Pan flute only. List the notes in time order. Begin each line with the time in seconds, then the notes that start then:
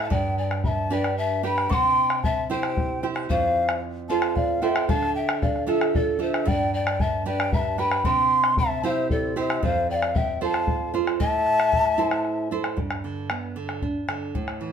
0.02 F5
0.11 D5
0.38 D5
0.65 E5
0.90 D5
1.18 E5
1.45 G5
1.71 G5
2.25 E5
2.51 C5
3.30 C5
4.10 F5
4.36 D5
4.62 E5
4.88 F5
5.16 E5
5.42 D5
5.67 A4
5.95 A4
6.22 C5
6.47 D5
6.74 D5
7.01 E5
7.27 D5
7.53 E5
7.80 G5
8.06 G5
8.59 E5
8.84 C5
9.11 A4
9.39 C5
9.64 C5
9.90 D5
10.15 E5
10.43 F5
11.20 E5